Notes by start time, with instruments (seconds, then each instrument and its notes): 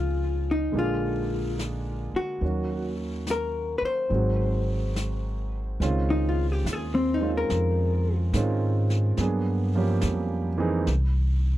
Already playing: upright bass C#2, grand piano F3 C4 C#4 D#4 G#4, hollow-body jazz guitar F4
0.51 hollow-body jazz guitar D#4
0.72 upright bass A#1, grand piano D3 G#3 A#3 D4, brush sweep
0.77 hollow-body jazz guitar F4, grand piano G#4
1.59 snare, hi-hat pedal
2.14 hollow-body jazz guitar F#4, muted upright bass stroke
2.41 upright bass D#2, grand piano D#3 F#3 A#3 C#4, brush sweep
2.45 grand piano F#4
3.27 snare, hi-hat pedal
3.31 hollow-body jazz guitar A#4
3.78 hollow-body jazz guitar B4, muted upright bass stroke
3.85 hollow-body jazz guitar C5
4.09 upright bass G#1, grand piano D#3 F#3 G#3 C4, brush sweep
4.14 grand piano F#4
4.96 snare, hi-hat pedal
5.80 upright bass C#2, grand piano D#3 G#3 C4 C#4 F4, brush sweep, snare
6.10 hollow-body jazz guitar D#4
6.29 hollow-body jazz guitar F4
6.52 hollow-body jazz guitar G4
6.64 upright bass D#2, snare, hi-hat pedal
6.73 hollow-body jazz guitar G#4
6.95 hollow-body jazz guitar C4
7.14 hollow-body jazz guitar D#4
7.20 grand piano D#3 G#3 C4 C#4 F4
7.37 hollow-body jazz guitar A#4
7.49 upright bass F2, brush sweep, snare
8.33 upright bass G#2, grand piano D#3 G#3 C4 C#4 F4, snare, hi-hat pedal
8.90 snare
9.17 upright bass G2, grand piano F#3 A#3 B3 D4 G#4, brush sweep, snare
9.75 grand piano F3 G3 A#3 C#4 G4
10.01 upright bass F2, snare, hi-hat pedal
10.58 grand piano E3 A#3 C4 D#4 G#4
10.87 upright bass C2, brush sweep, snare